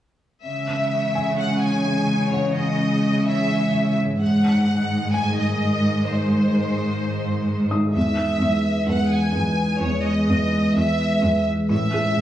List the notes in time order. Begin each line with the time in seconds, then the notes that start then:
0.45 C#3 E3 G#3 G#4 C#5 E5
1.15 G#5
1.39 F#5
1.63 G#5
2.33 C#5 F#5
2.56 D#5
3.27 E5
4.19 G#2 D#3 G#3 G#4 D#5 F#5
5.14 G#5
5.38 D#5
6.08 C5
7.71 D#4 D#6
7.95 E2 E3 G#3 G#4 B4 E5
8.42 E2
8.89 E2 B4 F#5
9.13 G#5
9.36 E2
9.83 E2 C#5
10.07 D#5
10.30 E2
10.77 E2 E5
11.24 E2
11.70 A2 C#4 E4 C#5 E5
11.94 G#3 G#4